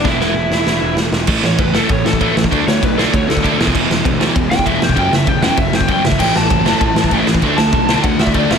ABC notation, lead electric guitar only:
X:1
M:4/4
L:1/8
Q:1/4=195
K:Edor
V:1 name="Lead electric guitar"
[Ee]6 z2 | [K:A] z c B A c A2 z | z c B A c A2 z | z4 z =g e g |
=g e g g e g g e | =g a6 z | z a3 f e d e |]